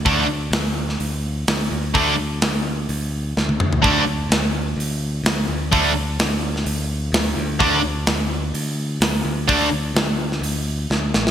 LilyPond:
<<
  \new Staff \with { instrumentName = "Distorted electric guitar" } { \time 4/4 \key c \mixolydian \tempo 4 = 127 <d a d'>8 r2. r8 | <d a d'>8 r2. r8 | <d a d'>8 r2. r8 | <d a d'>8 r2. r8 |
<d a d'>8 r2. r8 | <d a d'>8 r2. r8 | }
  \new Staff \with { instrumentName = "Picked electric bass" } { \clef bass \time 4/4 \key c \mixolydian d,8 d,8 d,4 d,4 d,8 d,8 | d,8 d,8 d,4 d,4 d,8 d,8 | d,8 d,8 d,4 d,4 d,8 d,8 | d,8 d,8 d,4 d,4 d,8 d,8 |
d,8 d,8 d,4 d,4 d,8 d,8 | d,8 d,8 d,4 d,4 d,8 a,,8 | }
  \new DrumStaff \with { instrumentName = "Drums" } \drummode { \time 4/4 <hho bd>4 <hho sn>8. sn16 hho4 <hho sn>4 | <hho bd>4 <hho sn>4 hho4 sn16 tommh16 toml16 tomfh16 | <hho bd>4 <hho sn>4 hho4 <hho sn>4 | <hho bd>4 <hho sn>8. sn16 hho4 <hho sn>4 |
<hho bd>4 <hho sn>4 hho4 <hho sn>4 | <hho bd>4 <hho sn>8. sn16 hho4 sn8 sn16 sn16 | }
>>